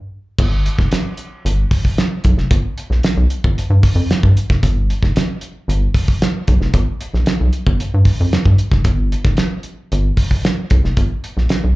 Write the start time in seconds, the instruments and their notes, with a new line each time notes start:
0.39 analog synth bass G1, kick, crash
0.66 closed hi-hat
0.79 analog synth bass F1, kick, snare
0.91 snare, closed hi-hat
1.17 closed hi-hat
1.45 analog synth bass G1, closed hi-hat
1.71 kick, open hi-hat
1.85 kick
1.98 snare, closed hi-hat
2.24 analog synth bass B1, kick, closed hi-hat
2.37 analog synth bass F1, snare
2.51 analog synth bass G1, kick, closed hi-hat
2.78 closed hi-hat
2.90 analog synth bass A#1, snare
3.03 snare, closed hi-hat
3.17 analog synth bass B1
3.30 closed hi-hat
3.44 analog synth bass G1, kick
3.57 analog synth bass G2, closed hi-hat
3.70 analog synth bass G2
3.83 kick, open hi-hat
3.95 analog synth bass F2
4.11 snare, closed hi-hat
4.23 analog synth bass G2, kick
4.37 closed hi-hat
4.50 analog synth bass F1, kick, snare
4.63 analog synth bass G1, kick, closed hi-hat
4.90 closed hi-hat
5.03 analog synth bass F1, kick, snare
5.16 snare, closed hi-hat
5.41 closed hi-hat
5.68 analog synth bass G1, closed hi-hat
5.94 kick, open hi-hat
6.08 kick
6.22 snare, closed hi-hat
6.47 analog synth bass B1, kick, closed hi-hat
6.61 analog synth bass F1, snare
6.74 analog synth bass G1, kick, closed hi-hat
7.01 closed hi-hat
7.14 analog synth bass A#1, snare
7.26 snare, closed hi-hat
7.40 analog synth bass B1
7.53 closed hi-hat
7.67 analog synth bass G1, kick
7.80 analog synth bass G2, closed hi-hat
7.94 analog synth bass G2
8.05 kick, open hi-hat
8.20 analog synth bass F2
8.33 snare, closed hi-hat
8.46 analog synth bass G2, kick
8.58 closed hi-hat
8.72 analog synth bass F1, kick, snare
8.84 analog synth bass G1, kick, closed hi-hat
9.12 closed hi-hat
9.25 analog synth bass F1, kick, snare
9.37 snare, closed hi-hat
9.63 closed hi-hat
9.92 analog synth bass G1, closed hi-hat
10.17 kick, open hi-hat
10.31 kick
10.45 snare, closed hi-hat
10.70 analog synth bass B1, kick, closed hi-hat
10.84 analog synth bass F1, snare
10.97 analog synth bass G1, kick, closed hi-hat
11.24 closed hi-hat
11.37 analog synth bass A#1, snare
11.49 snare, closed hi-hat
11.64 analog synth bass B1